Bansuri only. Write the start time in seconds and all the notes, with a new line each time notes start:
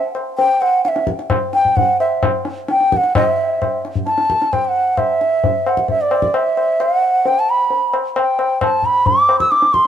0.38 G5
0.61 F#5
0.84 F#5
0.88 E5
1.54 G5
1.76 F#5
2.00 E5
2.70 G5
2.93 F#5 G5
3.16 D#5
3.28 E5
4.06 A5
4.53 G5
4.65 F#5 G5
4.98 E5
5.67 F#5
5.90 E5
6.01 D5
6.35 E5
6.81 F#5
7.27 G5
7.39 A5
7.50 B5
8.18 G5
8.63 A5
8.85 B5
9.07 D6
9.40 E6
9.51 D6
9.74 C6